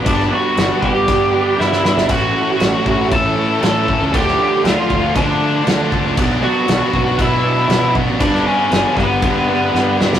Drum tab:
CC |x---x---x-------|x---x---x---x---|x---x---x---x---|x---x---x---x---|
SD |-o--o-------oooo|----o-------o---|-o--o-------o---|----o-------o---|
BD |o-----o-o-------|o-----o-o-----o-|o-----o-o-----o-|o-----o-o-----o-|

CC |x---x---x-------|
SD |-o--o-o-----o-oo|
BD |o-----o-o-------|